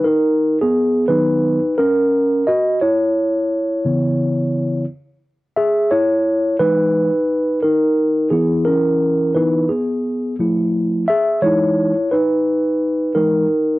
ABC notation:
X:1
M:4/4
L:1/16
Q:"Swing 16ths" 1/4=87
K:Elyd
V:1 name="Tine electric piano"
[DA]3 [B,G]3 [DB]4 [CA]4 [Fd]2 | [Ec]12 z4 | [Ge]2 [Ec]4 B6 [DA]4 | G2 [CA]4 [DB]2 [B,G]4 z4 |
[Ge]2 [Ec]4 [DB]6 A4 |]
V:2 name="Tine electric piano" clef=bass
z6 [D,F,B,]2 z8 | z6 [C,E,B,]6 z4 | z6 [E,G,D]2 z8 | [E,B,E]6 [E,B,E]2 z4 [=F,=A,E]4 |
z2 [E,G,D]2 z8 [E,G,D]2 z2 |]